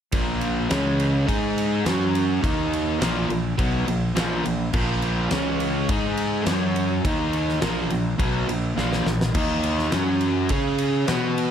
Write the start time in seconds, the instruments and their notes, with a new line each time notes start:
0.12 fingered electric bass A#1, overdriven electric guitar A#2 F3 A#3, kick, ride
0.41 ride
0.70 fingered electric bass C#2, overdriven electric guitar C#3 G#3 C#4, snare, ride
1.00 ride
1.26 fingered electric bass G#2, overdriven electric guitar G#3 D#4 G#4, kick, ride
1.58 ride
1.85 fingered electric bass F#2, overdriven electric guitar F#3 C#4 F#4, snare, ride
2.15 ride
2.42 fingered electric bass D#2, overdriven electric guitar D#3 A#3 D#4, kick, ride
2.73 ride
3.00 fingered electric bass A#1, overdriven electric guitar A#2 F3 A#3, snare, ride
3.29 fingered electric bass A#1, overdriven electric guitar A#2 F3, ride
3.58 fingered electric bass B1, overdriven electric guitar B2 F#3 B3, kick, ride
3.87 fingered electric bass A#1, overdriven electric guitar A#2 F3, ride
4.15 fingered electric bass A#1, overdriven electric guitar A#2 F3 A#3, snare, ride
4.44 fingered electric bass A#1, overdriven electric guitar A#2 F3, ride
4.73 fingered electric bass A#1, overdriven electric guitar A#2 F3 A#3, kick, crash
5.02 ride
5.31 fingered electric bass C#2, overdriven electric guitar C#3 G#3 C#4, snare, ride
5.60 ride
5.89 fingered electric bass G#2, overdriven electric guitar G#3 D#4 G#4, kick, ride
6.17 ride
6.46 fingered electric bass F#2, overdriven electric guitar F#3 C#4 F#4, snare, ride
6.76 ride
7.05 fingered electric bass D#2, overdriven electric guitar D#3 A#3 D#4, kick, ride
7.33 ride
7.49 snare
7.61 fingered electric bass A#1, overdriven electric guitar A#2 F3 A#3, snare, ride
7.90 fingered electric bass A#1, overdriven electric guitar A#2 F3, ride
8.18 fingered electric bass B1, overdriven electric guitar B2 F#3 B3, kick, ride
8.48 fingered electric bass A#1, overdriven electric guitar A#2 F3, ride
8.77 fingered electric bass A#1, overdriven electric guitar A#2 F3 A#3, snare
8.93 snare
9.06 fingered electric bass A#1, overdriven electric guitar A#2 F3, snare
9.21 snare
9.34 fingered electric bass D#2, overdriven electric guitar D#3 A#3 D#4, kick, crash, ride
9.63 ride
9.79 snare
9.92 fingered electric bass F#2, overdriven electric guitar F#3 C#4 F#4, snare, ride
10.21 ride
10.49 fingered electric bass C#3, overdriven electric guitar C#4 G#4 C#5, kick, ride
10.78 ride
11.08 fingered electric bass B2, overdriven electric guitar B3 F#4 B4, snare, ride
11.38 ride